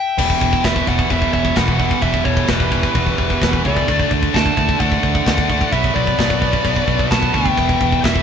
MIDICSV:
0, 0, Header, 1, 7, 480
1, 0, Start_track
1, 0, Tempo, 461894
1, 192, Time_signature, 4, 2, 24, 8
1, 8548, End_track
2, 0, Start_track
2, 0, Title_t, "Lead electric guitar"
2, 0, Program_c, 0, 29
2, 0, Note_on_c, 0, 79, 108
2, 674, Note_on_c, 0, 76, 96
2, 701, Note_off_c, 0, 79, 0
2, 917, Note_on_c, 0, 78, 97
2, 919, Note_off_c, 0, 76, 0
2, 1146, Note_on_c, 0, 76, 107
2, 1160, Note_off_c, 0, 78, 0
2, 1370, Note_off_c, 0, 76, 0
2, 1388, Note_on_c, 0, 76, 99
2, 1629, Note_on_c, 0, 78, 101
2, 1635, Note_off_c, 0, 76, 0
2, 2075, Note_off_c, 0, 78, 0
2, 2099, Note_on_c, 0, 76, 98
2, 2333, Note_off_c, 0, 76, 0
2, 2337, Note_on_c, 0, 73, 91
2, 2582, Note_on_c, 0, 71, 86
2, 2589, Note_off_c, 0, 73, 0
2, 3742, Note_off_c, 0, 71, 0
2, 3808, Note_on_c, 0, 74, 90
2, 4244, Note_off_c, 0, 74, 0
2, 4519, Note_on_c, 0, 81, 103
2, 4960, Note_off_c, 0, 81, 0
2, 4988, Note_on_c, 0, 78, 106
2, 5945, Note_on_c, 0, 76, 103
2, 5977, Note_off_c, 0, 78, 0
2, 6176, Note_off_c, 0, 76, 0
2, 6180, Note_on_c, 0, 74, 100
2, 7346, Note_off_c, 0, 74, 0
2, 7393, Note_on_c, 0, 81, 99
2, 7626, Note_off_c, 0, 81, 0
2, 7631, Note_on_c, 0, 79, 106
2, 8312, Note_off_c, 0, 79, 0
2, 8364, Note_on_c, 0, 76, 95
2, 8548, Note_off_c, 0, 76, 0
2, 8548, End_track
3, 0, Start_track
3, 0, Title_t, "Lead electric guitar"
3, 0, Program_c, 1, 29
3, 0, Note_on_c, 1, 76, 86
3, 638, Note_off_c, 1, 76, 0
3, 668, Note_on_c, 1, 71, 78
3, 892, Note_off_c, 1, 71, 0
3, 911, Note_on_c, 1, 74, 78
3, 1134, Note_off_c, 1, 74, 0
3, 1146, Note_on_c, 1, 71, 80
3, 1370, Note_off_c, 1, 71, 0
3, 1380, Note_on_c, 1, 73, 83
3, 1607, Note_off_c, 1, 73, 0
3, 1619, Note_on_c, 1, 71, 89
3, 2069, Note_off_c, 1, 71, 0
3, 2112, Note_on_c, 1, 71, 82
3, 2333, Note_off_c, 1, 71, 0
3, 2339, Note_on_c, 1, 69, 82
3, 2566, Note_off_c, 1, 69, 0
3, 2598, Note_on_c, 1, 67, 71
3, 3750, Note_off_c, 1, 67, 0
3, 3780, Note_on_c, 1, 69, 73
3, 4229, Note_off_c, 1, 69, 0
3, 4528, Note_on_c, 1, 78, 90
3, 4964, Note_off_c, 1, 78, 0
3, 4997, Note_on_c, 1, 74, 93
3, 5911, Note_off_c, 1, 74, 0
3, 5949, Note_on_c, 1, 71, 84
3, 6172, Note_off_c, 1, 71, 0
3, 6211, Note_on_c, 1, 71, 84
3, 7361, Note_off_c, 1, 71, 0
3, 7417, Note_on_c, 1, 78, 89
3, 7629, Note_off_c, 1, 78, 0
3, 7657, Note_on_c, 1, 76, 80
3, 8326, Note_off_c, 1, 76, 0
3, 8360, Note_on_c, 1, 71, 78
3, 8548, Note_off_c, 1, 71, 0
3, 8548, End_track
4, 0, Start_track
4, 0, Title_t, "String section"
4, 0, Program_c, 2, 48
4, 197, Note_on_c, 2, 67, 94
4, 202, Note_on_c, 2, 64, 79
4, 204, Note_on_c, 2, 52, 90
4, 208, Note_on_c, 2, 59, 79
4, 2091, Note_off_c, 2, 64, 0
4, 2103, Note_on_c, 2, 64, 80
4, 3990, Note_off_c, 2, 67, 0
4, 3994, Note_off_c, 2, 52, 0
4, 3995, Note_off_c, 2, 59, 0
4, 4004, Note_off_c, 2, 64, 0
4, 4024, Note_on_c, 2, 50, 89
4, 4026, Note_on_c, 2, 69, 94
4, 4028, Note_on_c, 2, 64, 79
4, 4032, Note_on_c, 2, 57, 79
4, 5927, Note_off_c, 2, 50, 0
4, 5929, Note_off_c, 2, 64, 0
4, 5931, Note_off_c, 2, 57, 0
4, 5933, Note_on_c, 2, 74, 96
4, 5938, Note_on_c, 2, 71, 78
4, 5941, Note_on_c, 2, 59, 84
4, 7846, Note_off_c, 2, 74, 0
4, 7849, Note_off_c, 2, 71, 0
4, 7859, Note_on_c, 2, 67, 88
4, 7862, Note_on_c, 2, 52, 86
4, 8548, Note_off_c, 2, 52, 0
4, 8548, Note_off_c, 2, 59, 0
4, 8548, Note_off_c, 2, 67, 0
4, 8548, Note_off_c, 2, 69, 0
4, 8548, End_track
5, 0, Start_track
5, 0, Title_t, "Distorted electric guitar"
5, 0, Program_c, 3, 30
5, 191, Note_on_c, 3, 40, 104
5, 202, Note_on_c, 3, 47, 96
5, 206, Note_on_c, 3, 52, 107
5, 666, Note_off_c, 3, 40, 0
5, 667, Note_off_c, 3, 47, 0
5, 670, Note_on_c, 3, 40, 83
5, 679, Note_off_c, 3, 52, 0
5, 679, Note_on_c, 3, 47, 104
5, 683, Note_on_c, 3, 52, 99
5, 902, Note_off_c, 3, 47, 0
5, 904, Note_off_c, 3, 40, 0
5, 909, Note_on_c, 3, 40, 89
5, 914, Note_on_c, 3, 47, 85
5, 917, Note_off_c, 3, 52, 0
5, 921, Note_on_c, 3, 52, 84
5, 1139, Note_off_c, 3, 40, 0
5, 1147, Note_off_c, 3, 47, 0
5, 1151, Note_off_c, 3, 52, 0
5, 1152, Note_on_c, 3, 40, 95
5, 1160, Note_on_c, 3, 47, 100
5, 1164, Note_on_c, 3, 52, 106
5, 1617, Note_off_c, 3, 40, 0
5, 1624, Note_off_c, 3, 47, 0
5, 1627, Note_off_c, 3, 52, 0
5, 1629, Note_on_c, 3, 40, 83
5, 1636, Note_on_c, 3, 47, 94
5, 1640, Note_on_c, 3, 52, 94
5, 1847, Note_off_c, 3, 40, 0
5, 1856, Note_off_c, 3, 47, 0
5, 1860, Note_on_c, 3, 40, 87
5, 1862, Note_off_c, 3, 52, 0
5, 1868, Note_on_c, 3, 47, 88
5, 1874, Note_on_c, 3, 52, 103
5, 2091, Note_off_c, 3, 40, 0
5, 2096, Note_off_c, 3, 47, 0
5, 2104, Note_on_c, 3, 40, 101
5, 2107, Note_off_c, 3, 52, 0
5, 2109, Note_on_c, 3, 47, 116
5, 2119, Note_on_c, 3, 52, 119
5, 2569, Note_off_c, 3, 40, 0
5, 2576, Note_off_c, 3, 47, 0
5, 2582, Note_on_c, 3, 40, 91
5, 2583, Note_off_c, 3, 52, 0
5, 2588, Note_on_c, 3, 47, 101
5, 2595, Note_on_c, 3, 52, 103
5, 2818, Note_off_c, 3, 40, 0
5, 2826, Note_off_c, 3, 47, 0
5, 2830, Note_on_c, 3, 40, 85
5, 2832, Note_off_c, 3, 52, 0
5, 2838, Note_on_c, 3, 47, 91
5, 2844, Note_on_c, 3, 52, 98
5, 3061, Note_off_c, 3, 40, 0
5, 3069, Note_off_c, 3, 47, 0
5, 3074, Note_off_c, 3, 52, 0
5, 3074, Note_on_c, 3, 40, 99
5, 3081, Note_on_c, 3, 47, 108
5, 3086, Note_on_c, 3, 52, 115
5, 3538, Note_off_c, 3, 40, 0
5, 3547, Note_off_c, 3, 47, 0
5, 3550, Note_on_c, 3, 40, 89
5, 3551, Note_off_c, 3, 52, 0
5, 3560, Note_on_c, 3, 47, 85
5, 3564, Note_on_c, 3, 52, 89
5, 3790, Note_off_c, 3, 40, 0
5, 3794, Note_off_c, 3, 47, 0
5, 3800, Note_off_c, 3, 52, 0
5, 3803, Note_on_c, 3, 40, 80
5, 3807, Note_on_c, 3, 47, 88
5, 3813, Note_on_c, 3, 52, 95
5, 4020, Note_off_c, 3, 40, 0
5, 4022, Note_off_c, 3, 47, 0
5, 4025, Note_off_c, 3, 52, 0
5, 4040, Note_on_c, 3, 50, 97
5, 4049, Note_on_c, 3, 57, 110
5, 4053, Note_on_c, 3, 62, 111
5, 4501, Note_off_c, 3, 50, 0
5, 4505, Note_off_c, 3, 57, 0
5, 4513, Note_on_c, 3, 50, 86
5, 4518, Note_on_c, 3, 57, 102
5, 4523, Note_off_c, 3, 62, 0
5, 4527, Note_on_c, 3, 62, 107
5, 4736, Note_off_c, 3, 50, 0
5, 4746, Note_off_c, 3, 57, 0
5, 4749, Note_on_c, 3, 50, 90
5, 4758, Note_off_c, 3, 62, 0
5, 4758, Note_on_c, 3, 57, 94
5, 4762, Note_on_c, 3, 62, 85
5, 4979, Note_off_c, 3, 50, 0
5, 4982, Note_off_c, 3, 57, 0
5, 4990, Note_off_c, 3, 62, 0
5, 4991, Note_on_c, 3, 50, 99
5, 4994, Note_on_c, 3, 57, 99
5, 5003, Note_on_c, 3, 62, 104
5, 5463, Note_off_c, 3, 50, 0
5, 5468, Note_off_c, 3, 57, 0
5, 5473, Note_off_c, 3, 62, 0
5, 5475, Note_on_c, 3, 50, 86
5, 5480, Note_on_c, 3, 57, 90
5, 5485, Note_on_c, 3, 62, 89
5, 5688, Note_off_c, 3, 50, 0
5, 5698, Note_off_c, 3, 57, 0
5, 5701, Note_on_c, 3, 50, 90
5, 5705, Note_off_c, 3, 62, 0
5, 5710, Note_on_c, 3, 57, 87
5, 5717, Note_on_c, 3, 62, 100
5, 5930, Note_off_c, 3, 50, 0
5, 5934, Note_off_c, 3, 57, 0
5, 5938, Note_off_c, 3, 62, 0
5, 5941, Note_on_c, 3, 47, 114
5, 5951, Note_on_c, 3, 54, 103
5, 5958, Note_on_c, 3, 59, 126
5, 6418, Note_off_c, 3, 47, 0
5, 6424, Note_off_c, 3, 54, 0
5, 6430, Note_on_c, 3, 47, 101
5, 6436, Note_on_c, 3, 54, 94
5, 6440, Note_off_c, 3, 59, 0
5, 6444, Note_on_c, 3, 59, 94
5, 6654, Note_off_c, 3, 47, 0
5, 6657, Note_off_c, 3, 54, 0
5, 6667, Note_on_c, 3, 47, 80
5, 6669, Note_on_c, 3, 54, 87
5, 6673, Note_off_c, 3, 59, 0
5, 6678, Note_on_c, 3, 59, 85
5, 6889, Note_off_c, 3, 47, 0
5, 6894, Note_off_c, 3, 54, 0
5, 6902, Note_on_c, 3, 47, 89
5, 6907, Note_on_c, 3, 54, 90
5, 6912, Note_off_c, 3, 59, 0
5, 6916, Note_on_c, 3, 59, 103
5, 7380, Note_off_c, 3, 47, 0
5, 7388, Note_off_c, 3, 54, 0
5, 7393, Note_on_c, 3, 47, 90
5, 7400, Note_on_c, 3, 54, 94
5, 7402, Note_off_c, 3, 59, 0
5, 7406, Note_on_c, 3, 59, 87
5, 7620, Note_off_c, 3, 47, 0
5, 7627, Note_off_c, 3, 54, 0
5, 7632, Note_on_c, 3, 47, 75
5, 7639, Note_on_c, 3, 54, 83
5, 7640, Note_off_c, 3, 59, 0
5, 7644, Note_on_c, 3, 59, 95
5, 7858, Note_off_c, 3, 47, 0
5, 7862, Note_off_c, 3, 54, 0
5, 7874, Note_on_c, 3, 40, 97
5, 7882, Note_on_c, 3, 47, 104
5, 7890, Note_on_c, 3, 52, 106
5, 8342, Note_off_c, 3, 40, 0
5, 8343, Note_off_c, 3, 47, 0
5, 8346, Note_on_c, 3, 40, 95
5, 8354, Note_off_c, 3, 52, 0
5, 8355, Note_on_c, 3, 47, 99
5, 8358, Note_on_c, 3, 52, 110
5, 8548, Note_off_c, 3, 40, 0
5, 8548, Note_off_c, 3, 47, 0
5, 8548, Note_off_c, 3, 52, 0
5, 8548, Note_off_c, 3, 59, 0
5, 8548, End_track
6, 0, Start_track
6, 0, Title_t, "Fingered electric bass"
6, 0, Program_c, 4, 33
6, 191, Note_on_c, 4, 28, 95
6, 373, Note_off_c, 4, 28, 0
6, 430, Note_on_c, 4, 28, 87
6, 612, Note_off_c, 4, 28, 0
6, 674, Note_on_c, 4, 28, 94
6, 855, Note_off_c, 4, 28, 0
6, 909, Note_on_c, 4, 28, 93
6, 1091, Note_off_c, 4, 28, 0
6, 1148, Note_on_c, 4, 28, 96
6, 1330, Note_off_c, 4, 28, 0
6, 1390, Note_on_c, 4, 28, 93
6, 1571, Note_off_c, 4, 28, 0
6, 1627, Note_on_c, 4, 28, 101
6, 1991, Note_off_c, 4, 28, 0
6, 2109, Note_on_c, 4, 28, 99
6, 2290, Note_off_c, 4, 28, 0
6, 2341, Note_on_c, 4, 28, 94
6, 2525, Note_off_c, 4, 28, 0
6, 2585, Note_on_c, 4, 28, 100
6, 2949, Note_off_c, 4, 28, 0
6, 3065, Note_on_c, 4, 28, 93
6, 3247, Note_off_c, 4, 28, 0
6, 3309, Note_on_c, 4, 28, 105
6, 3490, Note_off_c, 4, 28, 0
6, 3554, Note_on_c, 4, 28, 103
6, 3733, Note_off_c, 4, 28, 0
6, 3797, Note_on_c, 4, 37, 86
6, 3974, Note_off_c, 4, 37, 0
6, 4036, Note_on_c, 4, 38, 104
6, 4214, Note_off_c, 4, 38, 0
6, 4274, Note_on_c, 4, 38, 95
6, 4453, Note_off_c, 4, 38, 0
6, 4516, Note_on_c, 4, 38, 92
6, 4694, Note_off_c, 4, 38, 0
6, 4753, Note_on_c, 4, 38, 93
6, 4932, Note_off_c, 4, 38, 0
6, 4991, Note_on_c, 4, 38, 96
6, 5171, Note_off_c, 4, 38, 0
6, 5231, Note_on_c, 4, 38, 94
6, 5411, Note_off_c, 4, 38, 0
6, 5471, Note_on_c, 4, 38, 91
6, 5834, Note_off_c, 4, 38, 0
6, 5949, Note_on_c, 4, 35, 91
6, 6131, Note_off_c, 4, 35, 0
6, 6195, Note_on_c, 4, 35, 86
6, 6375, Note_off_c, 4, 35, 0
6, 6431, Note_on_c, 4, 35, 94
6, 6795, Note_off_c, 4, 35, 0
6, 6909, Note_on_c, 4, 35, 102
6, 7092, Note_off_c, 4, 35, 0
6, 7145, Note_on_c, 4, 35, 107
6, 7330, Note_off_c, 4, 35, 0
6, 7395, Note_on_c, 4, 35, 99
6, 7576, Note_off_c, 4, 35, 0
6, 7633, Note_on_c, 4, 38, 86
6, 7815, Note_off_c, 4, 38, 0
6, 7876, Note_on_c, 4, 28, 94
6, 8057, Note_off_c, 4, 28, 0
6, 8115, Note_on_c, 4, 28, 92
6, 8297, Note_off_c, 4, 28, 0
6, 8354, Note_on_c, 4, 28, 92
6, 8537, Note_off_c, 4, 28, 0
6, 8548, End_track
7, 0, Start_track
7, 0, Title_t, "Drums"
7, 192, Note_on_c, 9, 36, 86
7, 193, Note_on_c, 9, 49, 119
7, 193, Note_on_c, 9, 57, 67
7, 296, Note_off_c, 9, 36, 0
7, 297, Note_off_c, 9, 49, 0
7, 297, Note_off_c, 9, 57, 0
7, 311, Note_on_c, 9, 36, 90
7, 415, Note_off_c, 9, 36, 0
7, 430, Note_on_c, 9, 36, 92
7, 534, Note_off_c, 9, 36, 0
7, 549, Note_on_c, 9, 36, 94
7, 653, Note_off_c, 9, 36, 0
7, 663, Note_on_c, 9, 57, 72
7, 669, Note_on_c, 9, 36, 92
7, 675, Note_on_c, 9, 38, 126
7, 767, Note_off_c, 9, 57, 0
7, 773, Note_off_c, 9, 36, 0
7, 779, Note_off_c, 9, 38, 0
7, 790, Note_on_c, 9, 36, 87
7, 894, Note_off_c, 9, 36, 0
7, 908, Note_on_c, 9, 36, 89
7, 1011, Note_off_c, 9, 36, 0
7, 1027, Note_on_c, 9, 36, 88
7, 1131, Note_off_c, 9, 36, 0
7, 1146, Note_on_c, 9, 36, 86
7, 1147, Note_on_c, 9, 57, 62
7, 1250, Note_off_c, 9, 36, 0
7, 1251, Note_off_c, 9, 57, 0
7, 1266, Note_on_c, 9, 36, 81
7, 1370, Note_off_c, 9, 36, 0
7, 1386, Note_on_c, 9, 36, 81
7, 1490, Note_off_c, 9, 36, 0
7, 1504, Note_on_c, 9, 36, 88
7, 1608, Note_off_c, 9, 36, 0
7, 1618, Note_on_c, 9, 57, 61
7, 1623, Note_on_c, 9, 36, 85
7, 1631, Note_on_c, 9, 38, 116
7, 1722, Note_off_c, 9, 57, 0
7, 1727, Note_off_c, 9, 36, 0
7, 1735, Note_off_c, 9, 38, 0
7, 1745, Note_on_c, 9, 36, 86
7, 1849, Note_off_c, 9, 36, 0
7, 1866, Note_on_c, 9, 36, 86
7, 1970, Note_off_c, 9, 36, 0
7, 1984, Note_on_c, 9, 36, 84
7, 2088, Note_off_c, 9, 36, 0
7, 2095, Note_on_c, 9, 57, 62
7, 2102, Note_on_c, 9, 36, 87
7, 2199, Note_off_c, 9, 57, 0
7, 2206, Note_off_c, 9, 36, 0
7, 2222, Note_on_c, 9, 36, 87
7, 2326, Note_off_c, 9, 36, 0
7, 2340, Note_on_c, 9, 36, 90
7, 2444, Note_off_c, 9, 36, 0
7, 2461, Note_on_c, 9, 36, 87
7, 2565, Note_off_c, 9, 36, 0
7, 2570, Note_on_c, 9, 57, 68
7, 2582, Note_on_c, 9, 36, 90
7, 2583, Note_on_c, 9, 38, 127
7, 2674, Note_off_c, 9, 57, 0
7, 2686, Note_off_c, 9, 36, 0
7, 2687, Note_off_c, 9, 38, 0
7, 2703, Note_on_c, 9, 36, 93
7, 2807, Note_off_c, 9, 36, 0
7, 2824, Note_on_c, 9, 36, 96
7, 2928, Note_off_c, 9, 36, 0
7, 2944, Note_on_c, 9, 36, 97
7, 3048, Note_off_c, 9, 36, 0
7, 3064, Note_on_c, 9, 57, 70
7, 3066, Note_on_c, 9, 36, 91
7, 3168, Note_off_c, 9, 57, 0
7, 3170, Note_off_c, 9, 36, 0
7, 3186, Note_on_c, 9, 36, 77
7, 3289, Note_off_c, 9, 36, 0
7, 3308, Note_on_c, 9, 36, 85
7, 3412, Note_off_c, 9, 36, 0
7, 3431, Note_on_c, 9, 36, 83
7, 3535, Note_off_c, 9, 36, 0
7, 3550, Note_on_c, 9, 36, 83
7, 3552, Note_on_c, 9, 57, 64
7, 3565, Note_on_c, 9, 38, 118
7, 3654, Note_off_c, 9, 36, 0
7, 3656, Note_off_c, 9, 57, 0
7, 3669, Note_off_c, 9, 38, 0
7, 3671, Note_on_c, 9, 36, 85
7, 3774, Note_off_c, 9, 36, 0
7, 3793, Note_on_c, 9, 36, 89
7, 3897, Note_off_c, 9, 36, 0
7, 3913, Note_on_c, 9, 36, 91
7, 4017, Note_off_c, 9, 36, 0
7, 4035, Note_on_c, 9, 36, 92
7, 4039, Note_on_c, 9, 57, 66
7, 4139, Note_off_c, 9, 36, 0
7, 4143, Note_off_c, 9, 57, 0
7, 4152, Note_on_c, 9, 36, 82
7, 4256, Note_off_c, 9, 36, 0
7, 4272, Note_on_c, 9, 36, 89
7, 4376, Note_off_c, 9, 36, 0
7, 4393, Note_on_c, 9, 36, 89
7, 4497, Note_off_c, 9, 36, 0
7, 4513, Note_on_c, 9, 36, 94
7, 4521, Note_on_c, 9, 57, 68
7, 4533, Note_on_c, 9, 38, 124
7, 4617, Note_off_c, 9, 36, 0
7, 4625, Note_off_c, 9, 57, 0
7, 4632, Note_on_c, 9, 36, 91
7, 4637, Note_off_c, 9, 38, 0
7, 4736, Note_off_c, 9, 36, 0
7, 4752, Note_on_c, 9, 36, 96
7, 4856, Note_off_c, 9, 36, 0
7, 4871, Note_on_c, 9, 36, 89
7, 4975, Note_off_c, 9, 36, 0
7, 4986, Note_on_c, 9, 57, 67
7, 4990, Note_on_c, 9, 36, 85
7, 5090, Note_off_c, 9, 57, 0
7, 5094, Note_off_c, 9, 36, 0
7, 5110, Note_on_c, 9, 36, 85
7, 5214, Note_off_c, 9, 36, 0
7, 5230, Note_on_c, 9, 36, 86
7, 5334, Note_off_c, 9, 36, 0
7, 5351, Note_on_c, 9, 36, 91
7, 5455, Note_off_c, 9, 36, 0
7, 5471, Note_on_c, 9, 36, 87
7, 5471, Note_on_c, 9, 57, 63
7, 5483, Note_on_c, 9, 38, 114
7, 5575, Note_off_c, 9, 36, 0
7, 5575, Note_off_c, 9, 57, 0
7, 5587, Note_off_c, 9, 38, 0
7, 5590, Note_on_c, 9, 36, 88
7, 5694, Note_off_c, 9, 36, 0
7, 5711, Note_on_c, 9, 36, 88
7, 5815, Note_off_c, 9, 36, 0
7, 5832, Note_on_c, 9, 36, 84
7, 5936, Note_off_c, 9, 36, 0
7, 5950, Note_on_c, 9, 36, 88
7, 5956, Note_on_c, 9, 57, 60
7, 6054, Note_off_c, 9, 36, 0
7, 6060, Note_off_c, 9, 57, 0
7, 6071, Note_on_c, 9, 36, 85
7, 6175, Note_off_c, 9, 36, 0
7, 6192, Note_on_c, 9, 36, 86
7, 6296, Note_off_c, 9, 36, 0
7, 6311, Note_on_c, 9, 36, 86
7, 6415, Note_off_c, 9, 36, 0
7, 6430, Note_on_c, 9, 36, 88
7, 6432, Note_on_c, 9, 57, 62
7, 6445, Note_on_c, 9, 38, 120
7, 6534, Note_off_c, 9, 36, 0
7, 6536, Note_off_c, 9, 57, 0
7, 6548, Note_on_c, 9, 36, 85
7, 6549, Note_off_c, 9, 38, 0
7, 6652, Note_off_c, 9, 36, 0
7, 6669, Note_on_c, 9, 36, 96
7, 6773, Note_off_c, 9, 36, 0
7, 6789, Note_on_c, 9, 36, 88
7, 6893, Note_off_c, 9, 36, 0
7, 6907, Note_on_c, 9, 36, 89
7, 6910, Note_on_c, 9, 57, 63
7, 7011, Note_off_c, 9, 36, 0
7, 7013, Note_off_c, 9, 57, 0
7, 7028, Note_on_c, 9, 36, 84
7, 7132, Note_off_c, 9, 36, 0
7, 7148, Note_on_c, 9, 36, 79
7, 7252, Note_off_c, 9, 36, 0
7, 7268, Note_on_c, 9, 36, 84
7, 7372, Note_off_c, 9, 36, 0
7, 7386, Note_on_c, 9, 57, 64
7, 7389, Note_on_c, 9, 36, 83
7, 7399, Note_on_c, 9, 38, 117
7, 7490, Note_off_c, 9, 57, 0
7, 7493, Note_off_c, 9, 36, 0
7, 7503, Note_off_c, 9, 38, 0
7, 7508, Note_on_c, 9, 36, 87
7, 7612, Note_off_c, 9, 36, 0
7, 7629, Note_on_c, 9, 36, 86
7, 7733, Note_off_c, 9, 36, 0
7, 7748, Note_on_c, 9, 36, 84
7, 7852, Note_off_c, 9, 36, 0
7, 7872, Note_on_c, 9, 36, 86
7, 7875, Note_on_c, 9, 57, 68
7, 7976, Note_off_c, 9, 36, 0
7, 7979, Note_off_c, 9, 57, 0
7, 7993, Note_on_c, 9, 36, 83
7, 8097, Note_off_c, 9, 36, 0
7, 8114, Note_on_c, 9, 36, 88
7, 8218, Note_off_c, 9, 36, 0
7, 8235, Note_on_c, 9, 36, 83
7, 8339, Note_off_c, 9, 36, 0
7, 8355, Note_on_c, 9, 36, 95
7, 8357, Note_on_c, 9, 57, 72
7, 8369, Note_on_c, 9, 38, 122
7, 8459, Note_off_c, 9, 36, 0
7, 8461, Note_off_c, 9, 57, 0
7, 8473, Note_off_c, 9, 38, 0
7, 8475, Note_on_c, 9, 36, 89
7, 8548, Note_off_c, 9, 36, 0
7, 8548, End_track
0, 0, End_of_file